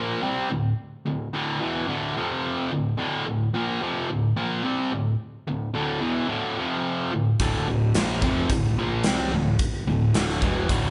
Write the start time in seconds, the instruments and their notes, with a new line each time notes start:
Already playing: distorted electric guitar A#2 F3 A#3
0.22 distorted electric guitar C3 G3 C4
0.50 distorted electric guitar D2 A2
1.06 distorted electric guitar D2 A2
1.33 distorted electric guitar D2 A2 D3
1.60 distorted electric guitar E2 B2 E3
1.87 distorted electric guitar D2 A2 D3
2.16 distorted electric guitar F2 C3 F3
2.71 distorted electric guitar D2 A2
2.97 distorted electric guitar D2 A2 D3
3.26 distorted electric guitar D2 A2
3.54 distorted electric guitar A#2 F3 A#3
3.81 distorted electric guitar F2 C3 F3
4.09 distorted electric guitar D2 A2
4.37 distorted electric guitar A#2 F3 A#3
4.64 distorted electric guitar C3 G3 C4
4.92 distorted electric guitar D2 A2
5.47 distorted electric guitar D2 A2
5.74 distorted electric guitar D2 A2 D3
6.00 distorted electric guitar E2 B2 E3
6.28 distorted electric guitar D2 A2 D3
6.57 distorted electric guitar F2 C3 F3
7.13 distorted electric guitar D2 A2
7.40 picked electric bass D1, distorted electric guitar D2 A2 D3, kick, closed hi-hat
7.68 picked electric bass D1, distorted electric guitar D2 A2
7.94 picked electric bass A#1, distorted electric guitar A#2 F3 A#3, snare, closed hi-hat
8.22 picked electric bass F1, distorted electric guitar F2 C3 F3, kick
8.50 picked electric bass D1, distorted electric guitar D2 A2, kick, closed hi-hat
8.78 picked electric bass A#1, distorted electric guitar A#2 F3 A#3
9.04 picked electric bass C2, distorted electric guitar C3 G3 C4, snare, closed hi-hat
9.32 picked electric bass D1, distorted electric guitar D2 A2
9.59 kick, closed hi-hat
9.88 picked electric bass D1, distorted electric guitar D2 A2
10.14 picked electric bass D1, distorted electric guitar D2 A2 D3, snare, closed hi-hat
10.29 snare
10.42 picked electric bass E1, distorted electric guitar E2 B2 E3, kick
10.69 picked electric bass D1, distorted electric guitar D2 A2 D3, kick, closed hi-hat